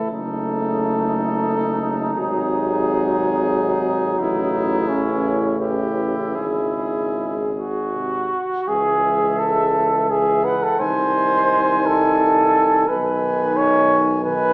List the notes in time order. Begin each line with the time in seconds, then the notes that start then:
Already playing: A3 E4
0.11 F#1 C#3 A3 D#4 A4
2.14 G#1 C3 F#3 G#4
4.19 A1 C#3 E4
4.88 E3 C#4
5.59 E4 G4
6.35 G#1 G#3 G#4
7.54 F#4
7.92 C3
8.67 C#2 E3 G#3 G#4 E5
9.39 A4
10.09 E3 G#3 G#4 E5
10.44 B4 F#5
10.63 A4
10.80 C2 D#3 D#4 C5 G#5
11.86 A4
12.88 B1 D#3 D#4 B4 G#5
13.57 C#5
14.24 D#3 D#4 B4 G#5